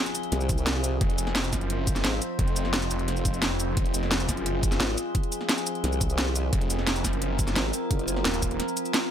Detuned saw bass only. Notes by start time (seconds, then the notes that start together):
1.01 F1
1.18 F1
1.53 F#1
2.39 F1
2.91 F1
3.77 F1
3.94 F1
4.29 F#1
6.53 F1
6.70 F1
7.04 F#1
8.25 D#1